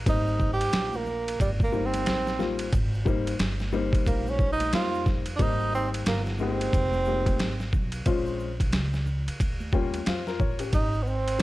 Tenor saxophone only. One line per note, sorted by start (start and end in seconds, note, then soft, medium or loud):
0.09 0.49 D#4 loud
0.53 0.98 G4 loud
0.96 1.40 A#3 medium
1.41 1.51 G3 medium
1.63 1.87 A#3 medium
1.85 2.51 C4 medium
4.07 4.31 A#3 medium
4.29 4.51 C#4 medium
4.52 4.72 D#4 loud
4.74 5.05 F4 medium
5.36 5.43 D4 medium
5.41 5.74 D#4 loud
5.75 5.89 C4 medium
6.08 6.23 A#3 medium
6.42 7.70 C4 loud
10.75 11.05 D#4 medium
11.03 11.10 B3 medium
11.08 11.42 C4 medium